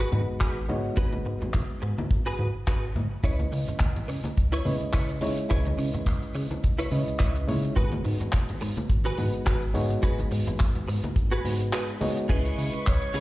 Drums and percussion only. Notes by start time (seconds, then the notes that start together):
0.12 high conga, low conga
0.41 kick, clap
0.70 high conga
0.97 kick
1.13 high conga
1.42 low conga
1.54 kick, clap, high conga
1.98 high conga
2.11 kick
2.39 high conga
2.67 kick, clap
2.96 high conga
3.24 kick, closed hi-hat
3.39 closed hi-hat, high conga
3.52 open hi-hat
3.68 closed hi-hat, low conga
3.79 kick, clap, closed hi-hat, high conga
3.96 closed hi-hat, low conga
4.09 open hi-hat
4.24 closed hi-hat, high conga
4.37 kick, closed hi-hat
4.52 closed hi-hat
4.65 open hi-hat, high conga, low conga
4.81 closed hi-hat
4.93 kick, clap, closed hi-hat
5.09 closed hi-hat
5.21 open hi-hat, high conga
5.37 closed hi-hat
5.50 kick, closed hi-hat
5.65 closed hi-hat, high conga
5.79 open hi-hat
5.94 closed hi-hat, low conga
6.06 kick, clap, closed hi-hat, high conga
6.22 closed hi-hat
6.34 open hi-hat
6.51 closed hi-hat, high conga
6.64 kick, closed hi-hat
6.79 closed hi-hat
6.91 open hi-hat, high conga
7.08 closed hi-hat
7.19 kick, clap, closed hi-hat
7.36 closed hi-hat
7.49 open hi-hat, high conga
7.64 closed hi-hat
7.76 kick, closed hi-hat
7.92 closed hi-hat, high conga
8.05 open hi-hat
8.20 closed hi-hat, low conga
8.32 kick, clap, closed hi-hat, high conga
8.49 closed hi-hat, low conga
8.61 open hi-hat
8.77 closed hi-hat, high conga
8.90 kick, closed hi-hat
9.05 closed hi-hat
9.18 open hi-hat, high conga, low conga
9.34 closed hi-hat
9.46 kick, clap, closed hi-hat
9.62 closed hi-hat
9.75 open hi-hat, high conga
9.90 closed hi-hat
10.03 kick, closed hi-hat
10.19 closed hi-hat, high conga
10.31 open hi-hat
10.47 closed hi-hat, low conga
10.60 kick, clap, closed hi-hat, high conga
10.75 closed hi-hat, low conga
10.89 open hi-hat
11.04 closed hi-hat, high conga
11.16 kick, closed hi-hat
11.31 closed hi-hat
11.45 open hi-hat, high conga
11.61 closed hi-hat
11.73 clap, closed hi-hat
11.88 closed hi-hat
12.01 open hi-hat, high conga
12.17 closed hi-hat
12.29 kick, closed hi-hat, crash
12.45 closed hi-hat
12.59 open hi-hat
12.73 closed hi-hat
12.87 kick, clap, closed hi-hat
13.02 closed hi-hat
13.15 open hi-hat